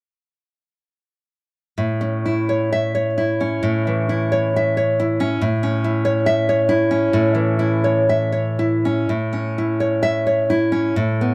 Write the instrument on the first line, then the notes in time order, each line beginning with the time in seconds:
nylon-string guitar
1.78 A2
2.01 C#4
2.26 E4
2.49 C#5
2.72 E5
2.95 C#5
3.18 E4
3.41 C#4
3.63 A2
3.87 E3
4.09 E4
4.32 C#5
4.56 E5
4.77 C#5
5.00 E4
5.20 C#4
5.41 A2
5.63 C#4
5.84 E4
6.05 C#5
6.26 E5
6.49 C#5
6.69 E4
6.91 C#4
7.13 A2
7.35 E3
7.59 E4
7.84 C#5
8.09 E5
8.32 C#5
8.59 E4
8.85 C#4
9.09 A2
9.33 C#4
9.58 E4
9.80 C#5
10.03 E5
10.27 C#5
10.50 E4
10.72 C#4
10.96 A2
11.21 B3